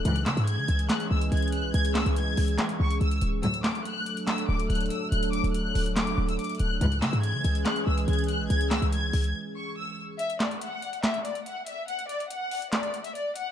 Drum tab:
HH |x-x-x-x-x---x-x-x-x---x-xxxxx---|x-x-x-x-x---o-x-x-x---x-x-x-x---|x-x-x-x-x---x-x-x-x---x-xxxxx---|x-x-x-x-x---o-x-x-x---x-xxxxx---|
CP |----x-----------x---------------|----x-----------x---------------|----x-----------x---------------|----------------x---------------|
SD |----o-----------o---------------|----o-----------o---------------|----o-----------o---------------|----------------o---------------|

HH |x-x-x-x-x---x-x-x-x---x-xxxxx---|x-x-x-x-x---o-x-----------------|x-x-x-x-x---x-x-x-x-x-x-x---x---|x-x-x-x-x---o-x-x-x-x-x-x---x---|
CP |----x-----------x---------------|----x---------------------------|----x-----------x---------------|----------------x---------------|
SD |----o-----------o---------------|----o---------------------------|----o-----------o---------------|----------------o---------------|